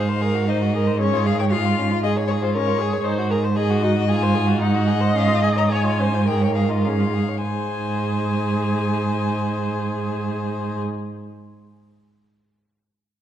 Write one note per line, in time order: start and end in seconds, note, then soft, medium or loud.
0.00 3.02 G#2 soft
0.00 0.51 F5 medium
0.08 0.23 C5 soft
0.21 0.36 G#4 soft
0.21 0.48 A#4 soft
0.35 0.49 F#4 soft
0.48 0.63 D#4 soft
0.48 0.57 C5 medium
0.48 1.00 D#5 soft
0.61 0.75 F#4 soft
0.74 0.88 G#4 soft
0.74 1.00 A#4 medium
0.87 1.00 C5 soft
1.00 1.15 C#4 soft
1.00 1.53 G#4 soft
1.00 1.28 C#5 medium
1.13 1.28 F4 soft
1.26 1.41 G#4 soft
1.26 1.39 F5 medium
1.39 1.54 C#5 soft
1.39 1.44 G5 medium
1.51 2.04 F4 medium
1.51 1.67 G#4 soft
1.51 2.01 F5 medium
1.65 1.81 F4 soft
1.79 1.93 C#4 soft
1.91 2.04 F4 soft
2.03 2.55 G#4 soft
2.03 2.18 G#4 soft
2.03 2.12 D#5 medium
2.17 2.32 C#5 soft
2.28 2.44 G#4 soft
2.28 2.33 C#5 medium
2.42 2.57 F4 soft
2.42 2.54 C5 medium
2.54 2.69 C#4 medium
2.54 2.80 A#4 medium
2.54 3.05 C#5 medium
2.67 2.83 F4 soft
2.78 3.06 G#4 medium
2.78 2.95 G#4 medium
2.93 3.05 C#5 soft
3.04 7.16 G#2 medium
3.04 3.20 D#4 medium
3.04 3.29 C5 medium
3.19 3.33 F#4 soft
3.30 3.45 G#4 soft
3.30 3.38 A#4 medium
3.44 3.58 C5 soft
3.56 3.71 G#4 medium
3.56 3.82 G#4 medium
3.56 4.10 D#5 medium
3.70 3.85 F#4 soft
3.83 3.98 D#4 soft
3.83 3.91 F#4 medium
3.96 4.09 F#4 medium
4.08 4.65 F4 medium
4.08 4.24 G#4 medium
4.08 4.61 G#5 medium
4.23 4.36 C5 medium
4.35 4.49 G#4 soft
4.47 4.62 F#4 soft
4.60 4.76 D#4 soft
4.60 4.91 D#4 medium
4.60 5.18 F#5 medium
4.74 4.89 F#4 soft
4.87 5.02 G#4 soft
4.87 5.74 D#5 medium
5.01 5.15 C5 soft
5.15 5.29 C#4 medium
5.15 5.43 F5 medium
5.28 5.43 F4 soft
5.42 5.58 G#4 soft
5.42 5.49 G#5 medium
5.56 5.70 C#5 soft
5.56 5.63 A#5 medium
5.69 5.85 G#4 soft
5.69 6.01 C#5 medium
5.69 6.29 G#5 medium
5.84 6.01 F4 soft
5.99 6.15 C#4 soft
5.99 6.26 C5 soft
6.13 6.27 F4 soft
6.27 6.44 G#4 soft
6.27 6.86 A#4 soft
6.27 6.54 G5 medium
6.42 6.57 C#5 soft
6.55 6.71 G#4 soft
6.55 6.72 F5 soft
6.70 6.87 F4 soft
6.70 6.86 D#5 soft
6.85 7.02 C#4 soft
6.85 7.14 G#4 soft
6.85 7.42 F5 soft
7.00 7.16 F4 soft
7.14 7.30 G#4 soft
7.29 7.43 C#5 soft
7.43 10.80 G#2 soft
7.43 10.81 G#4 soft
7.43 10.81 C5 soft
7.43 10.80 G#5 medium